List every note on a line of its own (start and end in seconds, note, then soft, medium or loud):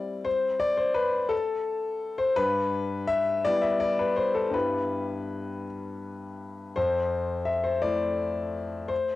0.00 2.33 G3 medium
0.00 2.34 C4 soft
0.00 2.34 E4 medium
0.00 0.25 D5 loud
0.25 0.60 C5 medium
0.60 0.78 D5 loud
0.77 0.96 C5 medium
0.94 1.31 B4 medium
1.29 2.18 A4 loud
2.18 2.37 C5 medium
2.36 3.42 G2 medium
2.36 3.08 B4 loud
3.07 3.44 E5 loud
3.45 4.50 G3 medium
3.45 4.51 B3 medium
3.45 4.53 E4 medium
3.45 3.63 D5 loud
3.62 3.80 E5 medium
3.80 3.99 D5 loud
3.99 4.17 B4 medium
4.16 4.35 C5 medium
4.35 4.54 A4 medium
4.50 6.70 G2 medium
4.50 6.71 G3 soft
4.50 6.72 B3 medium
4.50 5.66 B4 medium
4.54 6.72 E4 medium
6.76 7.81 F2 medium
6.76 7.47 C5 medium
7.45 7.64 E5 medium
7.64 7.83 C5 medium
7.82 9.15 A3 soft
7.82 9.15 E4 soft
7.82 8.90 D5 medium
8.88 9.15 C5 medium